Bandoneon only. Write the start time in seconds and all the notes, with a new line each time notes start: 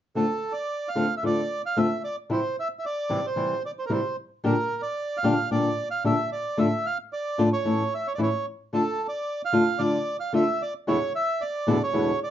0.16 A4
0.52 D5
0.88 F5
1.17 E5
1.26 D5
1.66 F5
1.78 E5
2.04 D5
2.32 C5
2.60 E5
2.79 E5
2.86 D5
3.26 C5
3.66 D5
3.79 C5
3.86 A#4
3.92 C5
4.45 A#4
4.82 D5
5.17 F5
5.52 D5
5.91 F5
6.06 E5
6.32 D5
6.59 E5
6.86 F5
7.13 D5
7.53 C#5
7.95 E5
8.07 C#5
8.15 D5
8.23 C#5
8.74 A4
9.08 D5
9.45 F5
9.79 D5
10.20 F5
10.35 E5
10.62 D5
10.88 C#5
11.16 E5
11.41 D5
11.83 C#5
12.24 D5